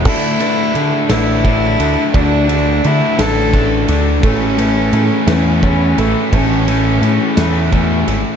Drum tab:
CC |x-----|------|------|------|
RD |-xxxxx|xxxxxx|xxxxxx|xxxxxx|
SD |---o--|---o--|---o--|---o--|
BD |o---o-|o---o-|o---o-|o---o-|